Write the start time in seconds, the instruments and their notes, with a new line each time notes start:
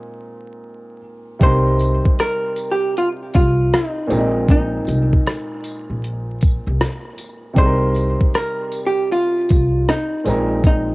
Already playing: felt piano A#2 G#3 C4 D#4 A#4
1.39 upright bass C2, felt piano C3 G3 D#4 D5, hollow-body jazz guitar C5, kick, closed hi-hat
1.45 felt piano A#4
1.79 closed hi-hat, tambourine
2.05 kick
2.19 hollow-body jazz guitar A#4, cross-stick, closed hi-hat
2.56 closed hi-hat, tambourine
2.71 hollow-body jazz guitar G4
2.97 hollow-body jazz guitar F4, closed hi-hat
3.34 upright bass C2, hollow-body jazz guitar F4, kick, closed hi-hat, tambourine
3.74 hollow-body jazz guitar D#4, cross-stick, closed hi-hat
4.07 upright bass A#1, felt piano A#2 G#3 C4 D4, closed hi-hat, tambourine
4.12 felt piano A#4
4.18 felt piano D#4
4.49 hollow-body jazz guitar D#4, kick, closed hi-hat
4.87 upright bass C2, closed hi-hat, tambourine
5.13 kick
5.27 cross-stick, closed hi-hat
5.64 closed hi-hat, tambourine
5.90 upright bass A#1
6.04 closed hi-hat
6.41 kick, closed hi-hat, tambourine
6.67 upright bass C2
6.81 cross-stick, closed hi-hat
7.18 closed hi-hat, tambourine
7.53 upright bass C2, felt piano C3 G3 D5, kick, closed hi-hat
7.57 felt piano D#4 G#4, hollow-body jazz guitar C5
7.65 felt piano A#4
7.94 closed hi-hat, tambourine
8.21 kick
8.34 hollow-body jazz guitar A#4, cross-stick, closed hi-hat
8.72 closed hi-hat, tambourine
8.87 hollow-body jazz guitar G4
9.12 hollow-body jazz guitar F4, closed hi-hat
9.49 upright bass C2, kick, closed hi-hat, tambourine
9.89 hollow-body jazz guitar D#4, cross-stick, closed hi-hat
10.24 upright bass A#1, felt piano A#2 G#3 C4 D#4, closed hi-hat, tambourine
10.29 felt piano A#4
10.64 hollow-body jazz guitar D#4, kick, closed hi-hat